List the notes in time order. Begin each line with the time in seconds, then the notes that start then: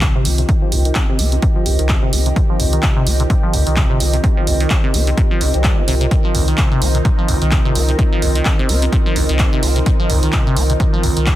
Already playing: D#3 C4 F4 G4 A#4 D#5
0.01 C3, kick, clap, closed hi-hat
0.15 C3
0.25 C2 C4, open hi-hat
0.38 C3, closed hi-hat
0.49 C3, kick, closed hi-hat
0.62 F3
0.72 C2, open hi-hat
0.85 D#3, closed hi-hat
0.95 C3, kick, clap, closed hi-hat
1.09 C3
1.19 C2 C4, open hi-hat
1.32 C3, closed hi-hat
1.42 C3, kick, closed hi-hat
1.56 F3
1.66 C2, open hi-hat
1.79 C2 D#3, closed hi-hat
1.89 C3, kick, clap, closed hi-hat
2.03 C3
2.13 C2 C4, open hi-hat
2.26 C3, closed hi-hat
2.36 C3, kick, closed hi-hat
2.49 F3
2.60 C2, open hi-hat
2.73 D#3, closed hi-hat
2.83 C3, kick, clap, closed hi-hat
2.96 C3
3.07 C2 C4, open hi-hat
3.20 C3, closed hi-hat
3.30 C3, kick, closed hi-hat
3.43 F3
3.54 C2, open hi-hat
3.67 C2 D#3, closed hi-hat
3.76 C3, kick, clap, closed hi-hat
3.90 C3
4.00 C2 C4, open hi-hat
4.13 C3, closed hi-hat
4.24 C3, kick, closed hi-hat
4.37 F3
4.47 C2, open hi-hat
4.60 D#3, closed hi-hat
4.70 C3, kick, clap, closed hi-hat
4.84 C3
4.94 C2 C4, open hi-hat
5.07 C3, closed hi-hat
5.17 C3, kick, closed hi-hat
5.31 F3
5.41 C2 C3, open hi-hat
5.54 C2 G3, closed hi-hat
5.64 G3, kick, clap, closed hi-hat
5.78 C4
5.88 C2 C3, open hi-hat
6.01 C3, closed hi-hat
6.11 C3 D#4, kick, closed hi-hat
6.24 F3
6.35 C2, open hi-hat
6.48 D#3, closed hi-hat
6.58 C3, kick, clap, closed hi-hat
6.71 C3
6.82 C2 C4, open hi-hat
6.95 C3, closed hi-hat
7.05 C3, kick, closed hi-hat
7.18 F3
7.28 C2, open hi-hat
7.42 C2 D#3, closed hi-hat
7.51 C3, kick, clap, closed hi-hat
7.65 C3
7.75 C2 C4, open hi-hat
7.89 C3, closed hi-hat
7.99 C3, kick, closed hi-hat
8.12 F3
8.22 C2, open hi-hat
8.35 D#3, closed hi-hat
8.45 C3, kick, clap, closed hi-hat
8.59 C3
8.69 C2 C4, open hi-hat
8.82 C3, closed hi-hat
8.93 C3, kick, closed hi-hat
9.06 F3
9.16 C2, open hi-hat
9.29 C2 D#3, closed hi-hat
9.39 C3, kick, clap, closed hi-hat
9.53 C3
9.63 C2 C4, open hi-hat
9.76 C3, closed hi-hat
9.86 C3, kick, closed hi-hat
10.00 F3
10.10 C2, open hi-hat
10.23 D#3, closed hi-hat
10.33 C3, kick, clap, closed hi-hat
10.46 C3
10.57 C2 C4, open hi-hat
10.70 C3, closed hi-hat
10.80 C3, kick, closed hi-hat
10.93 F3
11.03 C2, open hi-hat
11.17 C2 D#3, closed hi-hat
11.26 C3, kick, clap, closed hi-hat